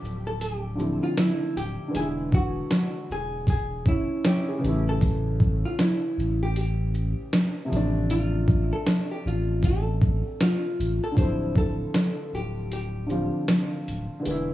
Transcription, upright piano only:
0.00 0.73 D3 medium
0.00 0.74 F3 medium
0.00 0.75 G3 medium
0.00 0.77 C4 medium
0.00 0.78 E5 medium
0.75 1.87 D3 medium
0.75 1.93 F3 soft
0.75 1.94 G3 soft
0.80 1.94 C4 medium
0.80 1.95 E4 medium
1.88 4.56 D3 medium
1.88 4.58 E3 medium
1.94 4.59 G#3 medium
1.94 4.60 B3 medium
1.99 3.47 E4 medium
3.88 4.23 C#4 medium
4.24 4.47 C#4 medium
4.24 4.47 E4 medium
4.49 4.67 E4 soft
4.49 4.85 G#4 medium
4.58 7.64 C#3 medium
4.58 7.66 E3 medium
4.64 7.67 G3 medium
4.64 7.68 A3 medium
4.69 7.70 E4 medium
7.65 10.72 C3 medium
7.65 10.73 F3 medium
7.71 10.74 G3 medium
7.71 10.76 A3 medium
7.76 10.77 D4 medium
11.12 13.03 D3 medium
11.12 13.04 F3 medium
11.18 13.06 G3 medium
11.18 13.07 C4 medium
11.23 13.09 E4 medium
13.06 14.18 D3 medium
13.06 14.24 F3 soft
13.06 14.25 G3 medium
13.06 14.25 C4 medium
13.12 14.26 F4 medium
14.20 14.54 D3 medium
14.20 14.54 E3 medium
14.25 14.54 G#3 medium
14.25 14.54 B3 medium
14.31 14.54 E4 medium

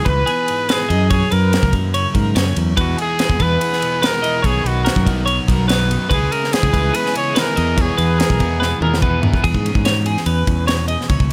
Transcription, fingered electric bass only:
0.06 0.22 C#2 medium
0.90 1.22 F#2 medium
1.32 1.56 F#2 medium
1.63 1.71 C#2 medium
1.73 2.05 F#2 medium
2.15 2.34 G#2 medium
2.36 2.54 F#2 medium
2.57 2.75 E2 medium
2.78 2.93 E2 medium
3.29 3.37 E2 medium
3.41 3.56 E2 medium
4.45 4.60 B1 medium
4.64 4.88 B1 medium
4.97 5.04 F#2 medium
5.07 5.38 B1 medium
5.48 5.96 B1 medium
6.10 6.26 C#2 loud
6.64 6.71 C#2 medium
6.74 6.89 C#2 medium
7.58 7.89 E2 medium
7.98 8.22 E2 medium
8.30 8.37 B1 medium
8.41 8.72 E2 medium
8.81 9.29 E2 medium
9.44 9.52 E2 medium
9.55 9.70 G#2 medium
9.75 10.15 G#2 medium
10.26 10.42 E2 medium
10.48 10.95 E2 medium
11.10 11.18 C#2 medium
11.20 11.33 C#2 medium

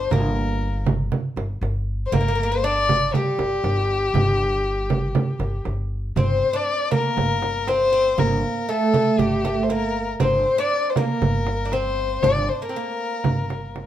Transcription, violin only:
0.00 0.13 C5 medium
0.11 0.87 A#4 medium
2.06 2.15 C5 medium
2.14 2.53 A#4 medium
2.52 2.66 C5 medium
2.64 3.16 D5 loud
3.15 5.66 G4 medium
6.18 6.58 C5 medium
6.56 6.93 D5 medium
6.94 7.70 A#4 medium
7.69 8.21 C5 loud
8.19 8.71 A#4 medium
8.70 9.21 A4 medium
9.20 9.65 G4 medium
9.64 9.73 C5 medium
9.72 10.09 A#4 medium
10.22 10.61 C5 medium
10.59 10.91 D5 medium
10.90 10.99 C5 medium
10.97 11.74 A#4 medium
11.73 12.25 C5 loud
12.23 12.51 D5 medium
12.49 12.63 C5 medium
12.62 13.86 A#4 medium

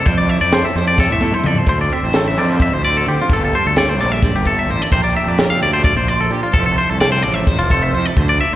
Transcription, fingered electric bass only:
0.06 0.38 F2 medium
0.41 0.62 F2 medium
0.75 1.07 F2 medium
1.10 1.31 A2 medium
1.45 1.56 F2 medium
1.67 1.89 D2 medium
2.03 2.38 A1 medium
2.38 2.69 F2 medium
2.73 3.04 D2 medium
3.07 3.17 D3 medium
3.30 3.51 G1 medium
3.66 4.00 D2 medium
4.00 4.31 A#1 medium
4.35 4.66 G1 medium
4.69 4.79 A1 medium
4.92 5.13 A#1 medium
5.26 5.61 F2 medium
5.61 5.93 D2 medium
5.95 6.28 A#1 medium
6.30 6.41 A#2 medium
6.54 6.75 F1 medium
6.89 7.25 C2 medium
7.25 7.56 A1 medium
7.59 7.91 F1 medium
7.94 8.05 F2 medium
8.17 8.38 D2 medium

